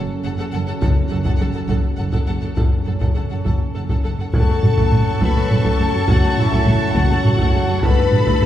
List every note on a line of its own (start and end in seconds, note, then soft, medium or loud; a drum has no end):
0.00 2.54 F#3 soft
0.00 2.53 C#4 soft
0.00 2.54 C#4 soft
0.00 2.53 A4 soft
0.24 0.31 F#1 soft
0.24 0.30 F#2 soft
0.24 0.31 A4 soft
0.24 0.30 F#5 soft
0.24 0.30 A5 soft
0.37 0.45 F#2 medium
0.37 0.45 A4 medium
0.37 0.43 F#5 medium
0.37 0.45 A5 medium
0.52 0.60 F#1 soft
0.52 0.59 F#2 soft
0.52 0.59 A4 medium
0.52 0.58 F#5 soft
0.52 0.60 A5 medium
0.66 0.73 F#2 soft
0.66 0.74 A4 soft
0.66 0.72 F#5 soft
0.66 0.74 A5 medium
0.81 0.89 F#1 medium
0.81 0.87 F#2 medium
0.81 0.88 A4 medium
0.81 0.87 F#5 medium
0.81 0.88 A5 medium
0.81 taiko medium
1.09 1.18 F#1 soft
1.09 1.17 F#2 medium
1.09 1.17 A4 soft
1.09 1.16 F#5 soft
1.09 1.18 A5 soft
1.24 1.32 F#2 medium
1.24 1.32 A4 medium
1.24 1.30 F#5 medium
1.24 1.32 A5 medium
1.24 taiko medium
1.38 1.47 F#1 soft
1.38 1.46 F#2 soft
1.38 1.46 A4 soft
1.38 1.44 F#5 soft
1.38 1.47 A5 soft
1.53 1.61 F#2 soft
1.53 1.61 A4 soft
1.53 1.59 F#5 soft
1.53 1.61 A5 soft
1.68 1.75 F#1 medium
1.68 1.75 F#2 medium
1.68 1.76 A4 medium
1.68 1.74 F#5 medium
1.68 1.75 A5 medium
1.68 taiko medium
1.97 2.04 F#1 soft
1.97 2.04 F#2 soft
1.97 2.05 A4 soft
1.97 2.03 F#5 soft
1.97 2.05 A5 soft
2.12 2.19 F#2 medium
2.12 2.19 A4 medium
2.12 2.18 F#5 medium
2.12 2.18 A5 medium
2.12 taiko medium
2.27 2.34 F#1 soft
2.27 2.33 F#2 soft
2.27 2.35 A4 soft
2.27 2.33 F#5 soft
2.27 2.34 A5 soft
2.41 2.49 F#2 soft
2.41 2.50 A4 soft
2.41 2.47 F#5 soft
2.41 2.48 A5 soft
2.56 2.63 F#1 soft
2.56 2.63 F#2 soft
2.56 4.02 F#3 soft
2.56 4.02 C#4 soft
2.56 4.01 A4 soft
2.56 2.64 A4 soft
2.56 2.62 F#5 soft
2.56 2.62 A5 soft
2.56 taiko medium
2.85 2.93 F#1 soft
2.85 2.93 F#2 soft
2.85 2.93 A4 soft
2.85 2.91 F#5 soft
2.85 2.92 A5 soft
3.00 3.07 F#2 soft
3.00 3.07 A4 soft
3.00 3.06 F#5 soft
3.00 3.07 A5 soft
3.00 taiko medium
3.15 3.22 F#1 soft
3.15 3.23 F#2 soft
3.15 3.21 A4 soft
3.15 3.22 F#5 soft
3.15 3.22 A5 soft
3.30 3.37 F#2 soft
3.30 3.36 A4 soft
3.30 3.37 F#5 soft
3.30 3.37 A5 soft
3.45 3.52 F#1 soft
3.45 3.51 F#2 soft
3.45 3.51 A4 soft
3.45 3.52 F#5 soft
3.45 3.53 A5 soft
3.45 taiko medium
3.74 3.81 F#1 soft
3.74 3.81 F#2 soft
3.74 3.80 A4 soft
3.74 3.81 F#5 soft
3.74 3.82 A5 soft
3.89 3.95 F#2 soft
3.89 3.95 A4 soft
3.89 3.96 F#5 soft
3.89 3.96 A5 soft
3.89 taiko medium
4.04 4.11 F#1 soft
4.04 4.10 F#2 soft
4.04 4.10 A4 soft
4.04 4.11 F#5 soft
4.04 4.11 A5 soft
4.18 4.24 F#2 soft
4.18 4.25 A4 soft
4.18 4.26 F#5 soft
4.18 4.26 A5 soft
4.33 4.39 F#1 medium
4.33 4.39 F#2 medium
4.33 7.79 F#3 medium
4.33 4.39 A3 medium
4.33 7.79 C#4 medium
4.33 7.79 A4 medium
4.33 5.17 A4 medium
4.33 7.79 A4 medium
4.33 7.79 C#5 medium
4.33 7.80 F#5 medium
4.33 7.79 A5 medium
4.33 5.17 A5 medium
4.33 7.79 A5 medium
4.33 7.79 C#6 medium
4.33 taiko medium
4.48 4.54 F#2 medium
4.48 4.55 A3 soft
4.62 4.69 F#1 medium
4.62 4.68 F#2 medium
4.62 4.69 F#3 medium
4.62 taiko low-mid medium
4.77 4.83 F#2 medium
4.77 4.83 A3 medium
4.77 taiko medium
4.91 4.98 F#1 medium
4.91 4.97 F#2 medium
4.91 4.98 A3 medium
4.91 taiko low-mid medium
5.20 5.27 F#1 medium
5.20 5.26 F#2 medium
5.20 5.27 A3 medium
5.20 5.50 B4 medium
5.20 5.51 B5 medium
5.20 taiko medium
5.35 5.42 F#2 medium
5.35 5.41 A3 soft
5.50 5.56 F#1 medium
5.50 5.56 F#2 medium
5.50 5.56 F#3 medium
5.50 6.08 A4 medium
5.50 6.09 A5 medium
5.50 taiko low-mid medium
5.64 5.71 F#2 medium
5.64 5.70 A3 medium
5.64 taiko medium
5.79 5.86 F#1 medium
5.79 5.85 F#2 medium
5.79 5.85 A3 medium
5.93 5.99 F#2 medium
5.93 6.00 F#3 medium
6.08 6.15 F#1 medium
6.08 6.14 F#2 medium
6.08 6.15 A3 medium
6.08 6.37 F#4 medium
6.08 6.37 F#5 medium
6.08 taiko loud
6.23 6.29 F#2 medium
6.23 6.29 A3 medium
6.37 6.43 F#1 medium
6.37 6.43 F#2 medium
6.37 6.44 F#3 soft
6.37 6.96 E4 medium
6.37 6.95 E5 medium
6.37 taiko low-mid medium
6.51 6.57 F#2 medium
6.51 6.58 A3 medium
6.51 taiko medium
6.66 6.73 F#1 medium
6.66 6.72 F#2 medium
6.66 6.72 A3 medium
6.66 taiko low-mid medium
6.95 7.01 F#1 medium
6.95 7.01 F#2 medium
6.95 7.01 A3 medium
6.95 7.84 F#4 loud
6.95 7.83 F#5 medium
6.95 taiko medium
7.09 7.15 F#2 medium
7.09 7.15 A3 medium
7.24 7.31 F#1 medium
7.24 7.30 F#2 medium
7.24 7.30 F#3 medium
7.24 taiko low-mid medium
7.38 7.44 F#2 medium
7.38 7.45 A3 medium
7.38 taiko medium
7.53 7.60 F#1 medium
7.53 7.59 F#2 medium
7.53 7.60 A3 medium
7.68 7.74 F#2 medium
7.68 7.75 F#3 medium
7.83 7.89 G1 medium
7.83 7.89 G2 medium
7.83 8.46 D3 medium
7.83 7.89 A3 medium
7.83 8.46 D4 medium
7.83 8.46 A4 medium
7.83 8.46 B4 medium
7.83 8.46 B4 loud
7.83 8.46 A5 medium
7.83 8.46 B5 medium
7.83 8.46 B5 loud
7.83 taiko loud
7.98 8.04 G2 medium
7.98 8.04 A3 medium
8.12 8.18 G1 medium
8.12 8.17 G2 medium
8.12 8.18 G3 medium
8.12 taiko low-mid medium
8.26 8.32 G2 medium
8.26 8.33 A3 medium
8.26 taiko medium
8.41 8.46 G1 medium
8.41 8.46 G2 medium
8.41 8.46 A3 medium
8.41 taiko low-mid medium